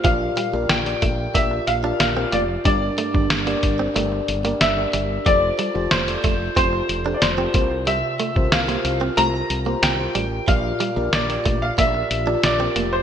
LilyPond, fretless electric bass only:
\new Staff \with { instrumentName = "Fretless electric bass" } { \clef bass \time 4/4 \key bes \lydian \tempo 4 = 92 bes,,8 r16 bes,,16 bes,,8 bes,,8 bes,,8 bes,,8 bes,,8 f,,8 | g,,8 r16 g,,16 g,,8 g,,8 g,,8 g,,8 g,,8 g,,8 | f,,8 r16 f,,16 f,,8 f,,8 f,,8 f,,8 f,,8 c,8~ | c,8 r16 c,16 c,8 c,8 c,8 c,8 c,8 a,,8 |
bes,,8 r16 bes,,16 bes,,8 bes,,8 bes,,8 bes,,8 bes,,8 f,,8 | }